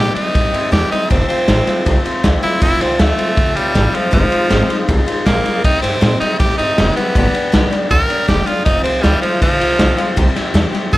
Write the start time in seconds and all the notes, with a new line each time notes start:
Already playing: C3 G3 C4 E4 G4
0.14 C4 D#4 E4 G4, muted upright bass stroke, ride
0.34 A2 G3 C4 E4 G4, kick, ride
0.52 G2 C4 E4 G4, ride
0.71 E2 C3 G3 C4 E4 G4, snare, ride
0.90 C4 D#4 E4 G4, muted upright bass stroke, ride
1.10 F1 F2 C3 F3 A3 C4 F4, kick, ride
1.28 F3 A3 C4 F4, muted upright bass stroke, ride
1.48 A1 F2 C3 F3 A3 C4 F4, snare, ride
1.67 F3 A3 C4 F4, muted upright bass stroke, snare, ride
1.85 C2 F3 A3 C4 F4, kick, snare, ride
2.05 F3 A3 C4 F4, muted upright bass stroke, ride
2.23 D2 F2 C3 F3 A3 C4 F4, kick, snare, ride
2.42 F3 A3 C4 E4 F4, muted upright bass stroke, ride
2.61 F1 F2 C3 F3 A3 C4 E4 F4, kick, ride
2.80 C2 F3 A3 C4 F4, snare, ride
2.99 D2 F2 C3 F3 A3 C4 F4, snare, ride
3.18 F3 A3 C4 F4, muted upright bass stroke, ride
3.36 D2 F3 A3 C4 F4, kick, ride
3.55 C2 F3 G3 A3 C4 F4, ride
3.74 A1 F2 C3 F3 A3 C4 F4, kick, snare, ride
3.93 F3 A3 C4 F4, ride
4.11 F1 F2 C3 D#3 F3 G#3 C4 F4, kick, ride
4.30 D#3 G#3 C4 F4, ride
4.50 G#1 F2 C3 D#3 G#3 C4 F4, snare, ride
4.68 D#3 G#3 C4 F4, muted upright bass stroke, ride
4.88 C2 D#3 G#3 C4 F4, kick, ride
5.06 D#3 G#3 C4 F4, muted upright bass stroke, ride
5.26 A#1 F2 C3 D#3 G#3 A#3 C4 F4, kick, snare, ride
5.46 D#3 G#3 C4 F4, ride
5.64 C2 C3 G3 C4 D#4 E4 G4, kick, ride
5.82 G2 C4 E4 G4, snare, ride
6.01 A#2 C3 G3 C4 E4 G4, snare, ride
6.20 C4 D#4 E4 G4, muted upright bass stroke, snare, ride
6.39 A2 G3 C4 E4 G4, kick, snare, ride
6.57 G2 C4 D#4 E4 G4, ride
6.78 F1 C3 G3 C4 E4 G4, snare, ride
6.96 B3 C4 E4 G4, ride
7.15 G1 G2 D3 G3 B3 D4 G4, kick, ride
7.33 G3 B3 D4 G4, muted upright bass stroke, ride
7.52 B1 G2 D3 G3 B3 D4 G4, snare, ride
7.70 G3 B3 D4 G4, muted upright bass stroke, snare, ride
7.89 D2 G3 B3 D4 G4 A#4, kick, ride
8.08 G3 B3 D4 G4, ride
8.27 E1 G2 D3 G3 B3 D4 G4, kick, snare, ride
8.46 G3 B3 D4 F4 G4, muted upright bass stroke, ride
8.65 F1 F2 C3 F3 A3 C4 D#4 F4, kick, ride
8.84 C2 F3 A3 C4 F4, ride
9.02 D2 F2 C3 F3 G3 A3 C4 F4, snare, ride
9.21 F3 A3 C4 F4, muted upright bass stroke, ride
9.41 D2 F3 A3 C4 F4, kick, snare, ride
9.60 C2 F3 A3 C4 F4, ride
9.79 B1 F2 C3 F3 A3 C4 F4, kick, snare, ride
9.97 F3 A3 C4 F4, ride
10.16 C2 C3 G3 C4 E4 G4, kick, ride
10.35 C4 E4 G4, muted upright bass stroke, snare, ride
10.54 E2 C3 G3 C4 E4 G4, snare, ride
10.72 C4 E4 G4, muted upright bass stroke, snare, ride
10.91 G2 G3 C4 E4 G4 A#4, kick, snare, ride